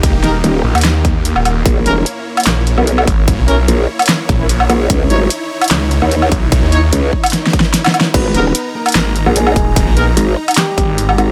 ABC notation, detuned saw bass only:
X:1
M:4/4
L:1/16
Q:"Swing 16ths" 1/4=148
K:G#m
V:1 name="Detuned saw bass" clef=bass
C,, E,,,3 z2 A,,, D,,4 D,,2 D,,,3 | z8 A,,,3 z3 G,,,2- | G,,, B,,,3 z6 A,,,4 z2 | z8 C,,3 z3 B,,,2- |
B,,, D,,3 z12 | z8 G,,,3 z3 D,,,2- | D,,, A,,,3 z6 G,,,4 z2 |]